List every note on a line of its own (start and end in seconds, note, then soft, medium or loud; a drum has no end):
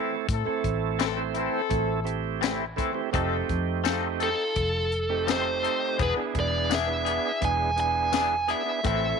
0.00 0.15 E3 soft
0.00 0.27 A3 medium
0.00 0.15 C4 medium
0.00 0.27 C4 medium
0.00 0.14 E4 medium
0.00 0.27 E4 medium
0.00 0.27 A4 loud
0.29 0.43 A2 medium
0.29 0.65 C4 medium
0.29 0.65 E4 medium
0.29 0.65 A4 loud
0.29 kick loud
0.29 closed hi-hat medium
0.45 1.05 A3 medium
0.45 1.05 C4 medium
0.45 1.05 E4 medium
0.45 1.05 A4 loud
0.45 muted fingered electric bass stroke soft
0.64 1.47 A1 medium
0.64 kick medium
0.64 closed hi-hat medium
0.99 1.21 A2 medium
0.99 1.21 E3 medium
0.99 1.22 C4 medium
0.99 1.17 C4 medium
0.99 1.22 E4 medium
0.99 1.18 E4 medium
0.99 1.19 A4 loud
0.99 snare medium
0.99 closed hi-hat medium
0.99 tambourine loud
1.16 1.61 A3 medium
1.16 1.61 C4 medium
1.16 1.62 E4 medium
1.16 1.61 C5 medium
1.34 1.58 E3 soft
1.34 1.58 C4 medium
1.34 2.07 C4 medium
1.34 1.57 E4 soft
1.34 2.08 E4 medium
1.34 2.08 A4 loud
1.34 closed hi-hat medium
1.69 2.81 A1 medium
1.69 2.00 A3 medium
1.69 2.00 C4 medium
1.69 2.00 E4 medium
1.69 2.00 A4 loud
1.69 kick medium
1.69 closed hi-hat medium
2.04 2.64 A3 medium
2.04 2.65 C4 medium
2.04 2.65 E4 medium
2.04 2.65 G4 medium
2.04 closed hi-hat medium
2.41 2.64 A2 medium
2.41 2.64 E3 medium
2.41 2.64 C4 medium
2.41 2.65 E4 medium
2.41 snare loud
2.41 closed hi-hat medium
2.41 tambourine loud
2.76 3.01 E3 soft
2.76 2.92 A3 medium
2.76 2.92 C4 medium
2.76 3.00 C4 soft
2.76 2.93 E4 medium
2.76 2.99 E4 medium
2.76 2.93 A4 medium
2.76 kick medium
2.76 closed hi-hat medium
2.93 3.09 A3 medium
2.93 3.10 C4 medium
2.93 3.10 E4 medium
2.93 3.10 G4 medium
3.11 3.42 F1 medium
3.11 3.35 F3 medium
3.11 4.30 A3 medium
3.11 4.30 C4 medium
3.11 3.36 C4 medium
3.11 4.30 D#4 medium
3.11 3.50 D#4 medium
3.11 3.36 D#4 medium
3.11 3.50 F4 medium
3.11 4.31 G4 medium
3.11 3.36 A4 medium
3.11 3.50 A4 medium
3.11 kick loud
3.11 closed hi-hat medium
3.49 4.32 F2 medium
3.49 kick medium
3.49 closed hi-hat medium
3.84 4.06 F3 medium
3.84 4.07 C4 medium
3.84 4.01 D#4 medium
3.84 4.07 D#4 medium
3.84 4.02 F4 medium
3.84 4.07 A4 medium
3.84 4.03 A4 medium
3.84 snare loud
3.84 closed hi-hat medium
3.84 tambourine loud
4.19 4.43 C4 soft
4.19 4.92 D#4 medium
4.19 4.43 D#4 soft
4.19 4.92 F4 medium
4.19 4.42 A4 soft
4.19 4.93 A4 medium
4.19 5.31 A4 medium
4.19 closed hi-hat medium
4.56 5.66 F1 medium
4.56 kick medium
4.56 closed hi-hat medium
4.92 closed hi-hat medium
5.10 5.98 A3 medium
5.10 5.98 C4 medium
5.10 5.98 D#4 medium
5.10 5.98 G4 medium
5.27 5.49 F3 medium
5.27 5.50 C4 medium
5.27 5.50 D#4 medium
5.27 5.50 A4 medium
5.27 6.02 C5 medium
5.27 snare loud
5.27 closed hi-hat medium
5.27 tambourine loud
5.63 5.86 C4 soft
5.63 5.86 D#4 soft
5.63 5.85 A4 soft
5.63 closed hi-hat medium
5.98 6.13 E1 medium
5.98 6.21 E3 medium
5.98 6.21 B3 medium
5.98 6.34 D4 medium
5.98 6.21 D4 medium
5.98 6.35 E4 medium
5.98 6.35 G#4 medium
5.98 6.22 G#4 medium
5.98 kick loud
5.98 closed hi-hat medium
6.03 6.12 B4 medium
6.16 6.75 B3 medium
6.16 6.76 D4 medium
6.16 6.76 E4 medium
6.16 6.76 G#4 medium
6.16 muted fingered electric bass stroke soft
6.35 7.18 E1 medium
6.35 kick medium
6.35 closed hi-hat soft
6.40 6.74 D5 medium
6.69 6.92 E3 medium
6.69 6.92 B3 medium
6.69 6.85 D4 medium
6.69 6.92 D4 medium
6.69 6.86 E4 medium
6.69 6.88 G#4 medium
6.69 6.93 G#4 medium
6.69 snare loud
6.69 closed hi-hat medium
6.69 tambourine loud
6.75 7.46 E5 medium
6.87 7.32 B3 medium
6.87 7.32 D4 medium
6.87 7.32 E4 medium
6.87 7.32 G#4 medium
7.05 7.29 B3 soft
7.05 7.77 D4 medium
7.05 7.28 D4 soft
7.05 7.78 E4 medium
7.05 7.27 G#4 soft
7.05 7.78 G#4 medium
7.05 closed hi-hat medium
7.41 8.52 E1 medium
7.41 7.71 B3 medium
7.41 7.71 D4 medium
7.41 7.71 E4 medium
7.41 7.72 G#4 medium
7.41 kick medium
7.41 closed hi-hat medium
7.45 7.79 G#5 loud
7.76 8.35 B3 medium
7.76 8.36 D4 medium
7.76 8.36 E4 medium
7.76 8.36 G#4 medium
7.76 8.52 G#5 loud
7.76 closed hi-hat medium
8.12 8.34 E3 medium
8.12 8.35 B3 medium
8.12 8.35 D4 medium
8.12 8.35 G#4 medium
8.12 snare loud
8.12 closed hi-hat medium
8.12 tambourine loud
8.48 8.63 B3 medium
8.48 8.72 B3 soft
8.48 8.63 D4 medium
8.48 8.71 D4 soft
8.48 8.63 E4 medium
8.48 8.70 G#4 soft
8.48 8.64 G#4 medium
8.48 8.83 E5 medium
8.48 closed hi-hat medium
8.65 8.81 B3 medium
8.65 8.81 D4 medium
8.65 8.81 E4 medium
8.65 8.81 G#4 medium
8.83 9.12 A1 loud
8.83 9.06 A2 medium
8.83 9.06 E3 medium
8.83 9.20 A3 medium
8.83 9.20 C4 medium
8.83 9.07 C4 medium
8.83 9.20 E4 medium
8.83 9.07 E4 medium
8.83 9.20 A4 medium
8.83 9.20 E5 medium
8.83 kick loud
8.83 closed hi-hat medium